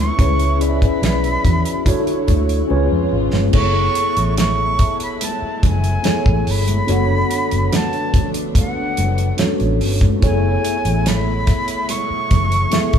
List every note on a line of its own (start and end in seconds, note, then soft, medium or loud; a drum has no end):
0.00 1.82 C#3 medium
0.00 1.82 E3 medium
0.00 0.16 A3 medium
0.00 0.20 B3 medium
0.00 0.18 E4 medium
0.00 2.66 E4 medium
0.00 0.21 A4 medium
0.00 0.20 C#5 medium
0.00 0.63 C#6 loud
0.18 0.85 C#2 loud
0.18 1.85 B3 medium
0.18 0.48 C#4 medium
0.18 0.48 E4 medium
0.18 0.49 G#4 medium
0.18 0.49 B4 medium
0.18 0.50 C#5 medium
0.18 kick medium
0.18 closed hi-hat medium
0.18 muted conga medium
0.39 closed hi-hat medium
0.59 1.79 C#4 medium
0.59 1.79 E4 medium
0.59 1.80 G#4 medium
0.59 1.80 B4 medium
0.59 0.68 D5 medium
0.59 2.28 B5 medium
0.59 closed hi-hat medium
0.69 1.84 E5 medium
0.82 kick medium
0.82 closed hi-hat medium
1.02 1.35 B1 medium
1.02 snare loud
1.02 closed hi-hat medium
1.02 high conga medium
1.24 closed hi-hat soft
1.44 1.61 E2 medium
1.44 2.24 F#4 medium
1.44 kick medium
1.44 closed hi-hat medium
1.44 low conga medium
1.65 closed hi-hat medium
1.85 2.19 D3 medium
1.85 2.69 D3 medium
1.85 2.70 F#3 medium
1.85 2.53 D4 medium
1.85 2.53 E4 medium
1.85 2.53 F#4 medium
1.85 2.54 A4 medium
1.85 2.70 C#5 medium
1.85 2.54 C#5 loud
1.85 kick medium
1.85 closed hi-hat medium
1.85 muted conga soft
2.07 closed hi-hat medium
2.28 2.61 D2 loud
2.28 3.08 C#5 medium
2.28 kick medium
2.28 closed hi-hat medium
2.28 muted conga soft
2.49 closed hi-hat soft
2.68 2.87 C#2 medium
2.68 3.53 C#3 medium
2.68 3.53 G#3 medium
2.68 3.53 B3 medium
2.68 3.36 C#4 medium
2.68 3.36 F4 medium
2.68 3.53 F4 medium
2.68 3.37 G#4 medium
2.68 3.37 B4 medium
2.68 3.37 C#5 loud
2.68 high conga medium
2.91 3.08 F2 medium
3.13 3.29 G#1 medium
3.33 3.49 G1 medium
3.33 snare medium
3.33 high conga medium
3.51 3.87 F#1 loud
3.51 6.85 B2 medium
3.51 6.85 F#3 medium
3.51 12.99 A3 medium
3.51 4.72 B3 medium
3.51 4.72 E4 medium
3.51 6.85 E4 medium
3.51 4.73 G#4 medium
3.51 4.73 A4 medium
3.51 4.73 C#5 medium
3.51 kick medium
3.51 crash medium
3.51 muted conga medium
3.56 4.34 C#6 loud
3.95 closed hi-hat medium
4.17 4.83 A1 medium
4.17 closed hi-hat medium
4.37 5.50 E5 medium
4.37 4.97 C#6 loud
4.37 snare loud
4.37 closed hi-hat medium
4.37 high conga medium
4.65 5.74 A5 medium
4.79 kick medium
4.79 closed hi-hat medium
5.00 5.26 B5 medium
5.00 closed hi-hat medium
5.21 5.58 A5 medium
5.21 closed hi-hat loud
5.21 muted conga soft
5.42 muted fingered electric bass stroke soft
5.58 5.68 A5 medium
5.63 5.96 F#1 medium
5.63 6.52 G#5 loud
5.63 kick medium
5.63 closed hi-hat medium
5.63 muted conga soft
5.63 low conga medium
5.84 closed hi-hat soft
6.03 6.63 B3 medium
6.03 6.64 E4 medium
6.03 6.64 G#4 medium
6.03 6.64 A4 medium
6.03 6.65 C#5 medium
6.03 snare loud
6.03 closed hi-hat medium
6.03 high conga medium
6.26 6.42 A1 medium
6.26 kick medium
6.47 6.80 G1 medium
6.47 7.77 B5 loud
6.47 open hi-hat medium
6.68 closed hi-hat medium
6.68 high conga medium
6.86 7.22 F#1 medium
6.86 10.19 D3 medium
6.86 8.06 B3 medium
6.86 10.19 B3 medium
6.86 8.07 D4 medium
6.86 10.19 D4 medium
6.86 8.07 F#4 medium
6.86 8.08 A4 medium
6.86 8.08 C#5 medium
6.86 8.01 F#5 medium
6.86 closed hi-hat medium
6.86 muted conga medium
7.31 closed hi-hat medium
7.51 7.68 F#1 medium
7.51 closed hi-hat medium
7.72 8.30 A5 medium
7.72 snare loud
7.72 closed hi-hat loud
7.72 high conga medium
7.93 closed hi-hat soft
8.14 9.26 C#5 medium
8.14 kick medium
8.14 closed hi-hat medium
8.14 low conga medium
8.34 closed hi-hat medium
8.55 9.36 F#5 medium
8.55 kick medium
8.55 closed hi-hat medium
8.55 muted conga soft
8.97 9.31 F#1 medium
8.97 closed hi-hat medium
8.97 muted conga medium
9.18 closed hi-hat soft
9.37 9.97 B3 medium
9.37 9.45 C#4 medium
9.37 9.98 F#4 medium
9.37 9.98 A4 medium
9.37 9.99 C#5 medium
9.37 snare loud
9.37 closed hi-hat medium
9.37 high conga medium
9.44 10.01 D4 medium
9.60 9.81 A1 medium
9.60 closed hi-hat soft
9.81 10.14 G1 medium
9.81 open hi-hat medium
10.01 kick medium
10.01 closed hi-hat medium
10.01 high conga medium
10.20 10.56 F#1 loud
10.20 12.99 B2 medium
10.20 12.99 F#3 medium
10.20 11.40 B3 medium
10.20 11.41 E4 medium
10.20 12.99 E4 medium
10.20 11.41 G#4 medium
10.20 11.42 A4 medium
10.20 11.42 C#5 medium
10.20 kick medium
10.20 closed hi-hat medium
10.20 muted conga medium
10.25 11.09 G#5 loud
10.65 closed hi-hat medium
10.85 11.51 A1 medium
10.85 closed hi-hat medium
11.06 11.92 B5 loud
11.06 snare loud
11.06 closed hi-hat medium
11.06 high conga medium
11.47 kick medium
11.47 snare soft
11.47 closed hi-hat medium
11.68 closed hi-hat medium
11.89 12.99 C#6 loud
11.89 closed hi-hat loud
11.89 muted conga soft
12.10 muted fingered electric bass stroke soft
12.31 12.64 F#1 medium
12.31 kick medium
12.31 closed hi-hat medium
12.31 muted conga soft
12.31 low conga medium
12.52 closed hi-hat soft
12.70 12.99 B3 medium
12.70 12.99 E4 medium
12.70 12.99 G#4 medium
12.70 12.99 A4 medium
12.70 12.99 E5 medium
12.70 snare loud
12.70 closed hi-hat medium
12.70 high conga medium
12.93 12.99 A1 medium
12.93 kick medium
12.93 closed hi-hat soft